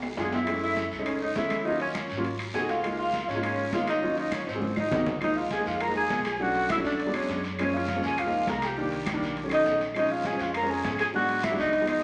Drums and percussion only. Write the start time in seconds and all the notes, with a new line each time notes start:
0.02 high conga, low timbale, claves
0.17 high conga, low timbale, short guiro
0.32 high conga, low timbale, short guiro
0.47 high conga, high timbale, long guiro, claves
0.62 high conga
0.77 high conga, high timbale, low timbale, short guiro
0.92 high conga, short guiro
1.06 high conga, high timbale, long guiro, claves
1.21 high conga
1.36 high conga, high timbale, low timbale, short guiro
1.50 high conga, high timbale, short guiro, claves
1.65 high conga, long guiro
1.80 high conga, high timbale
1.95 high conga, high timbale, low timbale, short guiro, claves
2.10 high conga, short guiro
2.24 high conga, high timbale, long guiro
2.39 high conga, high timbale, claves
2.54 high conga, low timbale, short guiro
2.69 high conga, high timbale, short guiro
2.83 high conga, high timbale, long guiro, claves
2.98 high conga
3.13 high conga, high timbale, low timbale, short guiro
3.28 high conga, short guiro
3.43 high conga, high timbale, long guiro, claves
3.58 high conga
3.72 high conga, high timbale, low timbale, short guiro
3.87 high timbale, short guiro, claves
4.03 high conga, long guiro
4.17 high conga, high timbale
4.32 high conga, high timbale, low timbale, short guiro, claves
4.47 high conga, high timbale, short guiro
4.62 high conga, high timbale, long guiro
4.76 high conga, high timbale, claves
4.91 low conga, low timbale, short guiro
5.06 low conga, low timbale, short guiro
5.21 high conga, high timbale, long guiro, claves
5.36 high conga
5.51 high conga, high timbale, low timbale, short guiro
5.66 high conga, short guiro
5.80 high conga, high timbale, long guiro, claves
5.96 high conga
6.10 high conga, high timbale, low timbale, short guiro
6.25 high timbale, short guiro, claves
6.40 high conga, long guiro
6.55 high conga, high timbale
6.69 high conga, high timbale, low timbale, short guiro, claves
6.84 high conga, short guiro
7.00 high conga, high timbale, long guiro
7.14 high conga, high timbale, claves
7.29 high conga, low timbale, short guiro
7.43 high conga, high timbale, short guiro
7.58 high conga, high timbale, long guiro, claves
7.74 high conga
7.88 high conga, high timbale, low timbale, short guiro
8.03 high conga, short guiro
8.18 high conga, high timbale, long guiro, claves
8.33 high conga
8.47 high conga, high timbale, low timbale, short guiro
8.62 high timbale, short guiro, claves
8.77 high conga, long guiro
8.92 high conga, high timbale
9.06 high conga, high timbale, low timbale, short guiro, claves
9.21 high conga, short guiro
9.36 high conga, high timbale, long guiro
9.50 high conga, high timbale, claves
9.66 high conga, low timbale, short guiro
9.81 high conga, high timbale, short guiro
9.94 high conga, high timbale, long guiro, claves
10.10 high conga
10.24 high conga, high timbale, low timbale, short guiro
10.39 high conga, short guiro
10.54 high conga, high timbale, long guiro, claves
10.70 high conga
10.84 high conga, high timbale, low timbale, short guiro
10.99 high timbale, short guiro, claves
11.14 high conga, long guiro
11.29 high conga, high timbale
11.43 high conga, high timbale, low timbale, short guiro, claves
11.58 high conga, short guiro
11.73 high conga, high timbale, long guiro
11.87 high conga, high timbale, claves